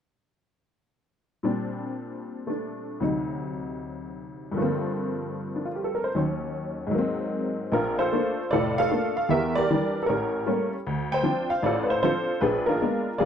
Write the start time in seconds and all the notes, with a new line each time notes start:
1.43 A#2 G3 C4 D4
2.47 A3 D4
3.00 D2 C3 F#3 D#4
4.52 G2 D3
4.56 F3 A3 A#3
4.62 C4
5.56 D4
5.65 F4
5.75 G4
5.84 A4
5.95 A#4
6.04 C5
6.14 D#2 D#3 F#3 C#4
6.87 G#2
6.91 F#3 A#3
6.98 C4
7.72 A#1 D4 F4 A#4
7.99 F4 A4 C5
8.12 A3 A#3 D4
8.51 F1 A2 F4 A4 D5
8.78 A4 D5 F5
8.91 A3 A#3 D4
9.17 F5
9.29 E2 G4 A#4 E5
9.55 G4 A#4 D5
9.70 E3 G3 D4
10.03 A4 A#4
10.09 A1 C#4 G4
10.46 G3 A3 A#3 C#4
10.87 D2
11.12 C5 G5
11.23 F3 C4 D4
11.50 F5
11.62 A1 F4 A4 D5
11.83 B4
11.90 C5
12.03 F3 C4 D4 F4 A4 C5
12.41 A#1 D4 G#4 B4
12.66 D4 F4 A#4
12.81 G#3 A#3 B3 D4
13.18 F1 F2 F4 G#4 D5